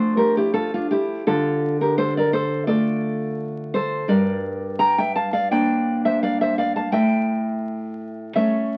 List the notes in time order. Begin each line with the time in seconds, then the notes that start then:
Already playing: F3 A3 D4 A4 C5
0.17 G4 A#4
0.37 E4 G4
0.54 F4 A4
0.74 D4 F4
0.91 E4 G4
1.27 D3 F4 A4
1.81 G4 A#4
1.98 A4 C5
2.17 A#4 D5
2.33 A4 C5
2.67 A3 F4 A4 D5
3.74 A4 C5
4.08 G2 A#4 D5
4.79 G5 A#5
4.98 E5 G5
5.16 F5 A5
5.33 D5 F5
5.51 A#3 D4 D5 G5
6.05 C5 E5
6.23 D5 F5
6.41 C5 E5
6.58 D5 F5
6.76 F5 A5
6.92 A2 E5 G5
8.36 A3 C#4 C#5 E5